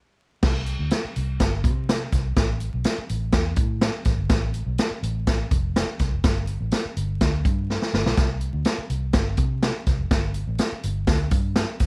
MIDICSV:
0, 0, Header, 1, 4, 480
1, 0, Start_track
1, 0, Tempo, 483871
1, 428, Time_signature, 4, 2, 24, 8
1, 11767, End_track
2, 0, Start_track
2, 0, Title_t, "Fingered electric bass"
2, 0, Program_c, 0, 33
2, 431, Note_on_c, 0, 36, 104
2, 746, Note_off_c, 0, 36, 0
2, 785, Note_on_c, 0, 38, 88
2, 892, Note_off_c, 0, 38, 0
2, 1155, Note_on_c, 0, 36, 85
2, 1363, Note_off_c, 0, 36, 0
2, 1391, Note_on_c, 0, 31, 104
2, 1627, Note_on_c, 0, 48, 94
2, 1642, Note_off_c, 0, 31, 0
2, 2050, Note_off_c, 0, 48, 0
2, 2108, Note_on_c, 0, 36, 85
2, 2319, Note_off_c, 0, 36, 0
2, 2347, Note_on_c, 0, 33, 98
2, 2664, Note_off_c, 0, 33, 0
2, 2715, Note_on_c, 0, 35, 77
2, 2817, Note_off_c, 0, 35, 0
2, 3073, Note_on_c, 0, 33, 89
2, 3282, Note_off_c, 0, 33, 0
2, 3306, Note_on_c, 0, 40, 108
2, 3518, Note_off_c, 0, 40, 0
2, 3538, Note_on_c, 0, 45, 107
2, 3859, Note_off_c, 0, 45, 0
2, 4025, Note_on_c, 0, 33, 88
2, 4132, Note_off_c, 0, 33, 0
2, 4144, Note_on_c, 0, 31, 97
2, 4251, Note_off_c, 0, 31, 0
2, 4263, Note_on_c, 0, 33, 99
2, 4582, Note_off_c, 0, 33, 0
2, 4625, Note_on_c, 0, 35, 86
2, 4732, Note_off_c, 0, 35, 0
2, 4986, Note_on_c, 0, 33, 94
2, 5409, Note_off_c, 0, 33, 0
2, 5470, Note_on_c, 0, 29, 92
2, 5786, Note_off_c, 0, 29, 0
2, 5948, Note_on_c, 0, 36, 102
2, 6054, Note_off_c, 0, 36, 0
2, 6075, Note_on_c, 0, 29, 87
2, 6177, Note_off_c, 0, 29, 0
2, 6193, Note_on_c, 0, 31, 96
2, 6507, Note_off_c, 0, 31, 0
2, 6551, Note_on_c, 0, 33, 85
2, 6656, Note_off_c, 0, 33, 0
2, 6911, Note_on_c, 0, 31, 88
2, 7121, Note_off_c, 0, 31, 0
2, 7151, Note_on_c, 0, 38, 102
2, 7361, Note_off_c, 0, 38, 0
2, 7392, Note_on_c, 0, 43, 103
2, 7707, Note_off_c, 0, 43, 0
2, 7869, Note_on_c, 0, 31, 93
2, 7975, Note_off_c, 0, 31, 0
2, 7986, Note_on_c, 0, 35, 82
2, 8093, Note_off_c, 0, 35, 0
2, 8109, Note_on_c, 0, 36, 97
2, 8426, Note_off_c, 0, 36, 0
2, 8463, Note_on_c, 0, 38, 85
2, 8571, Note_off_c, 0, 38, 0
2, 8827, Note_on_c, 0, 36, 94
2, 9039, Note_off_c, 0, 36, 0
2, 9069, Note_on_c, 0, 31, 101
2, 9280, Note_off_c, 0, 31, 0
2, 9304, Note_on_c, 0, 48, 109
2, 9623, Note_off_c, 0, 48, 0
2, 9789, Note_on_c, 0, 36, 93
2, 9895, Note_off_c, 0, 36, 0
2, 9910, Note_on_c, 0, 29, 92
2, 10016, Note_off_c, 0, 29, 0
2, 10029, Note_on_c, 0, 31, 101
2, 10346, Note_off_c, 0, 31, 0
2, 10390, Note_on_c, 0, 33, 85
2, 10496, Note_off_c, 0, 33, 0
2, 10753, Note_on_c, 0, 31, 92
2, 10963, Note_off_c, 0, 31, 0
2, 10991, Note_on_c, 0, 38, 98
2, 11202, Note_off_c, 0, 38, 0
2, 11225, Note_on_c, 0, 43, 103
2, 11544, Note_off_c, 0, 43, 0
2, 11709, Note_on_c, 0, 31, 88
2, 11767, Note_off_c, 0, 31, 0
2, 11767, End_track
3, 0, Start_track
3, 0, Title_t, "Muted fingered electric bass strokes"
3, 1035, Note_on_c, 9, 29, 42
3, 1134, Note_off_c, 9, 29, 0
3, 2957, Note_on_c, 9, 29, 47
3, 3056, Note_off_c, 9, 29, 0
3, 4867, Note_on_c, 9, 29, 41
3, 4966, Note_off_c, 9, 29, 0
3, 6797, Note_on_c, 9, 29, 45
3, 6896, Note_off_c, 9, 29, 0
3, 8711, Note_on_c, 9, 29, 45
3, 8810, Note_off_c, 9, 29, 0
3, 10636, Note_on_c, 9, 29, 43
3, 10735, Note_off_c, 9, 29, 0
3, 11767, End_track
4, 0, Start_track
4, 0, Title_t, "Drums"
4, 422, Note_on_c, 9, 49, 107
4, 424, Note_on_c, 9, 38, 116
4, 427, Note_on_c, 9, 36, 119
4, 521, Note_off_c, 9, 49, 0
4, 524, Note_off_c, 9, 38, 0
4, 526, Note_off_c, 9, 36, 0
4, 657, Note_on_c, 9, 42, 60
4, 756, Note_off_c, 9, 42, 0
4, 898, Note_on_c, 9, 42, 93
4, 907, Note_on_c, 9, 38, 105
4, 997, Note_off_c, 9, 42, 0
4, 1006, Note_off_c, 9, 38, 0
4, 1148, Note_on_c, 9, 42, 79
4, 1248, Note_off_c, 9, 42, 0
4, 1387, Note_on_c, 9, 42, 89
4, 1389, Note_on_c, 9, 36, 76
4, 1389, Note_on_c, 9, 38, 109
4, 1486, Note_off_c, 9, 42, 0
4, 1488, Note_off_c, 9, 36, 0
4, 1488, Note_off_c, 9, 38, 0
4, 1627, Note_on_c, 9, 36, 106
4, 1631, Note_on_c, 9, 42, 78
4, 1727, Note_off_c, 9, 36, 0
4, 1731, Note_off_c, 9, 42, 0
4, 1876, Note_on_c, 9, 38, 122
4, 1877, Note_on_c, 9, 42, 94
4, 1976, Note_off_c, 9, 38, 0
4, 1976, Note_off_c, 9, 42, 0
4, 2105, Note_on_c, 9, 42, 67
4, 2108, Note_on_c, 9, 36, 82
4, 2113, Note_on_c, 9, 38, 36
4, 2205, Note_off_c, 9, 42, 0
4, 2208, Note_off_c, 9, 36, 0
4, 2212, Note_off_c, 9, 38, 0
4, 2345, Note_on_c, 9, 42, 96
4, 2346, Note_on_c, 9, 36, 114
4, 2347, Note_on_c, 9, 38, 117
4, 2445, Note_off_c, 9, 42, 0
4, 2446, Note_off_c, 9, 36, 0
4, 2446, Note_off_c, 9, 38, 0
4, 2579, Note_on_c, 9, 42, 58
4, 2678, Note_off_c, 9, 42, 0
4, 2818, Note_on_c, 9, 42, 97
4, 2828, Note_on_c, 9, 38, 107
4, 2918, Note_off_c, 9, 42, 0
4, 2927, Note_off_c, 9, 38, 0
4, 3068, Note_on_c, 9, 42, 81
4, 3167, Note_off_c, 9, 42, 0
4, 3297, Note_on_c, 9, 42, 87
4, 3299, Note_on_c, 9, 38, 109
4, 3305, Note_on_c, 9, 36, 80
4, 3396, Note_off_c, 9, 42, 0
4, 3398, Note_off_c, 9, 38, 0
4, 3404, Note_off_c, 9, 36, 0
4, 3534, Note_on_c, 9, 42, 84
4, 3541, Note_on_c, 9, 36, 105
4, 3633, Note_off_c, 9, 42, 0
4, 3640, Note_off_c, 9, 36, 0
4, 3784, Note_on_c, 9, 38, 127
4, 3785, Note_on_c, 9, 42, 88
4, 3884, Note_off_c, 9, 38, 0
4, 3884, Note_off_c, 9, 42, 0
4, 4015, Note_on_c, 9, 42, 77
4, 4023, Note_on_c, 9, 38, 35
4, 4025, Note_on_c, 9, 36, 94
4, 4114, Note_off_c, 9, 42, 0
4, 4122, Note_off_c, 9, 38, 0
4, 4124, Note_off_c, 9, 36, 0
4, 4260, Note_on_c, 9, 42, 102
4, 4261, Note_on_c, 9, 38, 114
4, 4264, Note_on_c, 9, 36, 114
4, 4359, Note_off_c, 9, 42, 0
4, 4360, Note_off_c, 9, 38, 0
4, 4363, Note_off_c, 9, 36, 0
4, 4500, Note_on_c, 9, 42, 58
4, 4599, Note_off_c, 9, 42, 0
4, 4742, Note_on_c, 9, 42, 94
4, 4752, Note_on_c, 9, 38, 116
4, 4842, Note_off_c, 9, 42, 0
4, 4851, Note_off_c, 9, 38, 0
4, 4993, Note_on_c, 9, 42, 81
4, 5093, Note_off_c, 9, 42, 0
4, 5228, Note_on_c, 9, 42, 96
4, 5230, Note_on_c, 9, 38, 100
4, 5231, Note_on_c, 9, 36, 88
4, 5327, Note_off_c, 9, 42, 0
4, 5329, Note_off_c, 9, 38, 0
4, 5330, Note_off_c, 9, 36, 0
4, 5468, Note_on_c, 9, 42, 80
4, 5469, Note_on_c, 9, 36, 104
4, 5567, Note_off_c, 9, 42, 0
4, 5568, Note_off_c, 9, 36, 0
4, 5715, Note_on_c, 9, 38, 127
4, 5716, Note_on_c, 9, 42, 87
4, 5815, Note_off_c, 9, 38, 0
4, 5815, Note_off_c, 9, 42, 0
4, 5945, Note_on_c, 9, 42, 71
4, 5950, Note_on_c, 9, 36, 89
4, 5953, Note_on_c, 9, 38, 35
4, 6044, Note_off_c, 9, 42, 0
4, 6050, Note_off_c, 9, 36, 0
4, 6052, Note_off_c, 9, 38, 0
4, 6188, Note_on_c, 9, 42, 97
4, 6189, Note_on_c, 9, 36, 124
4, 6190, Note_on_c, 9, 38, 114
4, 6287, Note_off_c, 9, 42, 0
4, 6288, Note_off_c, 9, 36, 0
4, 6289, Note_off_c, 9, 38, 0
4, 6418, Note_on_c, 9, 42, 59
4, 6517, Note_off_c, 9, 42, 0
4, 6660, Note_on_c, 9, 42, 85
4, 6669, Note_on_c, 9, 38, 104
4, 6759, Note_off_c, 9, 42, 0
4, 6769, Note_off_c, 9, 38, 0
4, 6911, Note_on_c, 9, 42, 77
4, 7010, Note_off_c, 9, 42, 0
4, 7150, Note_on_c, 9, 42, 89
4, 7152, Note_on_c, 9, 38, 99
4, 7153, Note_on_c, 9, 36, 85
4, 7249, Note_off_c, 9, 42, 0
4, 7252, Note_off_c, 9, 38, 0
4, 7253, Note_off_c, 9, 36, 0
4, 7391, Note_on_c, 9, 36, 112
4, 7392, Note_on_c, 9, 42, 73
4, 7490, Note_off_c, 9, 36, 0
4, 7491, Note_off_c, 9, 42, 0
4, 7641, Note_on_c, 9, 38, 65
4, 7740, Note_off_c, 9, 38, 0
4, 7758, Note_on_c, 9, 38, 71
4, 7858, Note_off_c, 9, 38, 0
4, 7878, Note_on_c, 9, 38, 95
4, 7977, Note_off_c, 9, 38, 0
4, 7996, Note_on_c, 9, 38, 103
4, 8095, Note_off_c, 9, 38, 0
4, 8106, Note_on_c, 9, 42, 98
4, 8107, Note_on_c, 9, 38, 115
4, 8109, Note_on_c, 9, 36, 120
4, 8205, Note_off_c, 9, 42, 0
4, 8207, Note_off_c, 9, 38, 0
4, 8208, Note_off_c, 9, 36, 0
4, 8339, Note_on_c, 9, 42, 54
4, 8438, Note_off_c, 9, 42, 0
4, 8578, Note_on_c, 9, 42, 92
4, 8587, Note_on_c, 9, 38, 110
4, 8677, Note_off_c, 9, 42, 0
4, 8687, Note_off_c, 9, 38, 0
4, 8827, Note_on_c, 9, 42, 75
4, 8926, Note_off_c, 9, 42, 0
4, 9059, Note_on_c, 9, 42, 93
4, 9061, Note_on_c, 9, 38, 111
4, 9067, Note_on_c, 9, 36, 93
4, 9158, Note_off_c, 9, 42, 0
4, 9160, Note_off_c, 9, 38, 0
4, 9166, Note_off_c, 9, 36, 0
4, 9296, Note_on_c, 9, 42, 79
4, 9304, Note_on_c, 9, 36, 102
4, 9395, Note_off_c, 9, 42, 0
4, 9403, Note_off_c, 9, 36, 0
4, 9549, Note_on_c, 9, 38, 123
4, 9549, Note_on_c, 9, 42, 88
4, 9648, Note_off_c, 9, 38, 0
4, 9649, Note_off_c, 9, 42, 0
4, 9786, Note_on_c, 9, 42, 78
4, 9789, Note_on_c, 9, 36, 91
4, 9793, Note_on_c, 9, 38, 39
4, 9885, Note_off_c, 9, 42, 0
4, 9889, Note_off_c, 9, 36, 0
4, 9892, Note_off_c, 9, 38, 0
4, 10028, Note_on_c, 9, 36, 112
4, 10028, Note_on_c, 9, 42, 90
4, 10029, Note_on_c, 9, 38, 122
4, 10127, Note_off_c, 9, 36, 0
4, 10127, Note_off_c, 9, 42, 0
4, 10128, Note_off_c, 9, 38, 0
4, 10257, Note_on_c, 9, 42, 60
4, 10356, Note_off_c, 9, 42, 0
4, 10500, Note_on_c, 9, 42, 96
4, 10509, Note_on_c, 9, 38, 107
4, 10599, Note_off_c, 9, 42, 0
4, 10608, Note_off_c, 9, 38, 0
4, 10748, Note_on_c, 9, 42, 77
4, 10848, Note_off_c, 9, 42, 0
4, 10983, Note_on_c, 9, 42, 88
4, 10985, Note_on_c, 9, 38, 117
4, 10989, Note_on_c, 9, 36, 90
4, 11082, Note_off_c, 9, 42, 0
4, 11084, Note_off_c, 9, 38, 0
4, 11089, Note_off_c, 9, 36, 0
4, 11219, Note_on_c, 9, 42, 86
4, 11225, Note_on_c, 9, 36, 114
4, 11319, Note_off_c, 9, 42, 0
4, 11324, Note_off_c, 9, 36, 0
4, 11464, Note_on_c, 9, 38, 127
4, 11464, Note_on_c, 9, 42, 86
4, 11563, Note_off_c, 9, 38, 0
4, 11564, Note_off_c, 9, 42, 0
4, 11701, Note_on_c, 9, 42, 69
4, 11708, Note_on_c, 9, 36, 92
4, 11709, Note_on_c, 9, 38, 36
4, 11767, Note_off_c, 9, 36, 0
4, 11767, Note_off_c, 9, 38, 0
4, 11767, Note_off_c, 9, 42, 0
4, 11767, End_track
0, 0, End_of_file